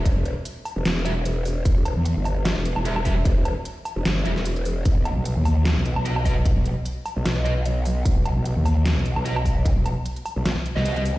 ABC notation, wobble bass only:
X:1
M:4/4
L:1/16
Q:"Swing 16ths" 1/4=150
K:Em
V:1 name="Wobble bass" clef=bass
E,,, E,,,2 z4 E,,, E,,,8 | E,,, E,,,2 E,,2 G,,,4 E,,,2 E,,,4- E,,,- | E,,, E,,,2 z4 E,,, G,,,2 E,,,6 | B,,, B,,,2 B,,,2 ^D,,4 B,,,2 B,,,4- B,,,- |
B,,, B,,,2 z4 B,,, B,,,8 | B,,, B,,,2 B,,,2 ^D,,4 B,,,2 B,,,4- B,,,- | B,,, B,,,2 z4 B,,, B,,, z2 C,,4 z |]